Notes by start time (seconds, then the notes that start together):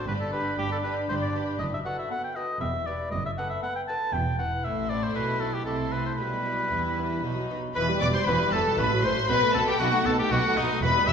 0.07 G1 G2 D4 G4 B4 B5
0.20 A4
0.32 B3 D4 G4 B4 B5
0.58 G1 G2 D4 G4 B5
0.72 A4
0.84 B3 D4 G4 B4 B5
1.09 G1 G2 D4 G4 C5 B5
1.22 D5
1.34 B3 D4 G4 B5
1.59 F#1 F#2 D#5
1.74 E5
1.85 B3 F#4 A4 F#5
1.99 E5
2.10 B3 A4 F#5 B5
2.24 G5
2.36 B3 F#4 A4 D#5
2.61 E1 E2 B3 G4 E5 B5
2.87 B3 G4 B4 D5
3.11 F#1 F#2 D#5
3.26 E5
3.38 B3 A4 B4 F#5
3.50 E5
3.62 B3 A4 F#5 B5
3.76 G5
3.88 B3 A4 B4 A5
4.13 E1 E2 B3 E4 G5 B5
4.39 B3 E4 B4 F#5
4.64 A1 A2 A3 E4 E5 C6
4.90 C4 E4 A4 D5
5.04 C5
5.15 B1 B2 B4
5.40 C4 E4 A4
5.54 G4
5.66 C2 C3 A3 E4 A4 C6
5.92 C4 E4 A4 B4
6.06 C5
6.18 B1 B2 G3 E4 B4 B5
6.45 B3 E4 G4
6.72 E2 E3
6.98 B3 E4 G4
7.24 B1 B2 F#3 D#4 B5
7.50 B3 D#4 F#4
7.75 E1 E2 E3 B4 B5
7.89 G3
8.01 E1 E2 E3 D5 D6
8.13 G3 C5 C6
8.25 E1 E2 E3 B3 E4 G4 B4 B5
8.40 G3
8.51 E1 E2 E3 A4 A5
8.66 G3
8.78 A1 A2 A3 F#4 B4 B5
8.91 F#3
9.03 A1 A2 A3 C5 C6
9.17 F#3
9.28 B1 B2 B3 B4 B5
9.43 A3
9.54 B1 B2 B3 A4 A5
9.67 A3 G4 G5
9.79 B1 B2 A3 B3 D#4 F#4 F#5
9.93 A3
10.05 B1 B2 B3 A4 A5
10.19 A3 G4 G5
10.31 B1 B2 A3 B3 D#4 F#4 F#5
10.45 A3
10.56 B1 B2 B3 D#4 D#5
10.71 A3
10.82 E1 E2 E3 B4 B5
10.96 G3
11.07 E1 E2 E3 E5 E6